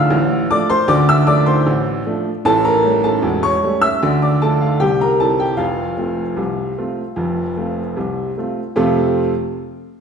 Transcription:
upright piano
Already playing: D2 D3 F3 A3 D4 D5 E5 F5 D6 E6 F6
0.10 A1 A2
0.51 F3 A3 D4 D5 D6
0.70 C5 C6
0.88 D2 D3 D5 D6
1.09 E5 E6
1.26 F3 A3 D4 D5 D6
1.46 C5 C6
1.66 A1 A2
2.06 F3 A3 D4
2.45 A1 A2 A4 A5
2.65 A#4 A#5
2.84 G3 A3 C#4
3.04 A4 A5
3.22 E1 E2
3.43 C#5 C#6
3.63 G3 A3 C#4
3.82 E5 E6
4.02 D2 D3
4.22 D5 D6
4.42 F3 A3 D4 A4 A5
4.61 F4 F5
4.80 C2 C3 G4 G5
5.01 A#4 A#5
5.20 G3 C4 E4 A4 A5
5.40 G4 G5
5.57 F1 F2 F4 F5
5.97 A3 C4 F4
6.36 C2 C3
6.78 A3 C4 F4
7.16 F1 F2
7.57 A3 C4 F4
7.96 C2 C3
8.38 A3 C4 F4
8.76 F2 C3 A3 C4 F4 A4

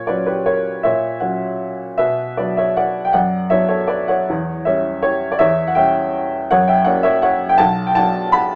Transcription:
upright piano
Already playing: A#2 A#4 C#5
0.07 F#3 C#4 B4 D5
0.27 G4 B4
0.46 A#4 C#5
0.83 A#2 C#5 E5
1.20 F#3 C#4 C#5 F#5
1.98 B2 B4 E5
2.37 F#3 B3 D4 B4 D5
2.57 C#5 E5
2.77 D5 F#5
3.05 G5
3.13 F#2 D5 F#5
3.50 F#3 B3 D4 C#5 E5
3.68 A4 C#5
3.87 B4 D5
4.08 C#5 F#5
4.30 E2
4.65 G3 C#4 C#5 E5
5.03 G4 C#5
5.32 D5
5.39 E2 C#5 E5
5.67 F#5
5.75 G3 C#4 E5 G5
6.51 F#2 C#5 F#5
6.68 E5 G5
6.85 F#3 A#3 C#4 D5 F#5
7.03 C#5 E5
7.22 C#5 F#5
7.49 G5
7.58 B1 F#5 A5
7.87 G5
7.95 F#3 B3 D4 F#5 A5
8.32 F#5 B5

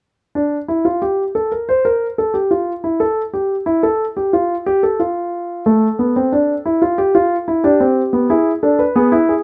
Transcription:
grand piano
0.35 D4
0.68 E4
0.85 F4
1.02 G4
1.35 A4
1.52 A#4
1.69 C5
1.85 A#4
2.18 A4
2.34 G4
2.51 F4
2.84 E4
3.00 A4
3.33 G4
3.66 E4
3.83 A4
4.17 G4
4.33 F4
4.66 G4
4.83 A4
5.00 F4
5.66 A3 A4
5.99 B3
6.16 C4
6.32 D4
6.66 E4
6.82 F4
6.98 G4
7.15 F4
7.48 E4
7.64 D4 G4
7.80 C4
8.13 B3
8.30 E4 G#4
8.63 D4 A4
8.79 B4
8.96 B3 G#4
9.12 E4
9.29 G#4

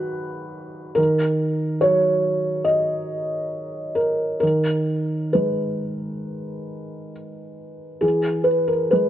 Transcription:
felt piano
Already playing: D#3 F#3 F#4 F#5 B5 F#6
0.95 D#3 A#4
1.81 F#3 C#5
2.65 D#5
3.95 A#4
4.40 D#3 A#4
5.33 G#3 B4
8.01 E3 G#4
8.44 B4
8.68 A#4
8.91 G#3 B4

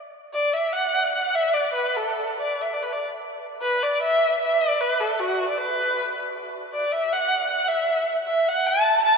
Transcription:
erhu
0.34 D5
0.53 E5
0.73 F#5
1.13 F#5
1.34 E5
1.54 D5
1.73 B4
1.97 A4
2.40 D5
2.61 E5
2.73 D5
2.83 B4
2.93 D5
3.62 B4
3.83 D5
4.02 E5
4.41 E5
4.61 D5
4.81 B4
5.00 A4
5.20 F#4
5.49 D5
5.58 B4
6.73 D5
6.92 E5
7.12 F#5
7.51 F#5
7.68 E5
8.26 E5
8.48 F#5
8.67 A5
9.05 A5

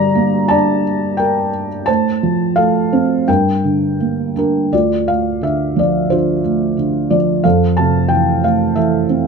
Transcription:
felt piano
Already playing: G2 D3 G3 G4 D5 A#5
0.15 A#3
0.48 D4 D5 A5
1.17 A#4 G5
1.86 A2 C5 A5
2.23 F3
2.56 A3 A4 F5
2.93 C4
3.28 G2 A#4 G5
3.64 D3
4.00 A#3
4.36 D4 A#4
4.72 D2 F4 D5
5.08 A2 F5
5.41 D3 E5
5.76 F3 D5
6.10 D3 F4 C5
6.44 A3
6.77 D3
7.10 F3 D5
7.44 F2 A4 F5
7.77 C3 A5
8.08 E3 G5
8.43 A3 F5
8.76 E3 A4 E5
9.09 C4

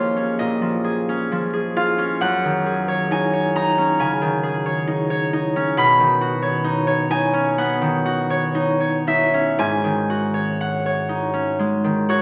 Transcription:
harp
Already playing: D#2 F3 C#4 D#4 F4 G#4 C#5 D#5
0.16 C#4
0.39 A#2 D#5
0.62 F3
0.84 G#4
1.09 C#4
1.32 F3
1.53 G#4
1.76 F4 F5
1.98 C#4
2.21 F#2 F#5
2.44 D#3
2.66 G#4
2.88 C#5
3.11 D#4 G#5
3.33 C#5
3.56 D#4 A#5
3.78 C#4
3.99 C#3 G#5
4.22 D#3
4.43 G#4
4.66 C#5
4.87 D#4
5.10 C#5
5.33 D#4
5.56 C#4
5.77 B2 B5
6.00 D#3
6.21 F#4
6.42 C#5
6.64 D#4
6.87 C#5
7.10 D#4 G#5
7.33 C#4
7.58 B3 F#5
7.81 D#3
8.05 F#4
8.30 C#5
8.55 D#4
8.80 C#5
9.07 D#4 E5
9.34 C#4
9.58 G#2 G#5
9.84 D#3
10.10 F#4
10.34 C#5
10.61 F#5
10.86 C#5
11.09 D#4
11.34 C#4
11.59 G#3
11.84 D#3
12.09 F#4 C#5

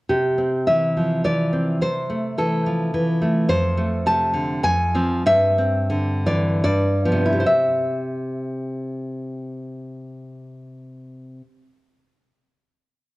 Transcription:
nylon-string guitar
0.10 C3 G4
0.39 C4
0.68 E3 E5
0.97 F3
1.24 E3 D5
1.52 C4
1.81 C3 C5
2.09 A3
2.38 E3 A4
2.66 F3
2.94 E3
3.21 A3
3.49 F2 C5
3.77 A3
4.06 C3 A5
4.34 D3
4.63 F2 G#5
4.95 F3 C4
5.26 G2 E5
5.58 C4
5.90 D3
6.26 E3 D5
6.64 G2 D5
7.05 F3 B3
7.12 C3
7.26 E4
7.33 G4
7.40 C5
7.46 E5

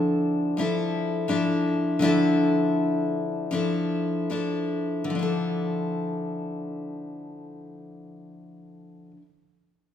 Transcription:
steel-string acoustic guitar
Already playing: D3 F3 D4 E4 A4
0.57 F3 D4 E4 A4
1.28 F3 D4 E4 A4
1.99 D3 F3 D4 E4
2.04 A4
3.51 F3 D4 E4 A4
4.30 F3 D4 E4 A4
5.04 D3
5.10 F3
5.15 D4 E4
5.23 A4

